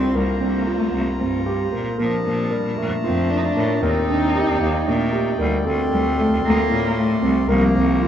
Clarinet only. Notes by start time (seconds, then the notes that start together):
1.99 F3
2.52 G3
2.78 A3
3.82 C4
4.61 A#3
4.87 A3
5.40 G3
5.66 C4
7.49 A#3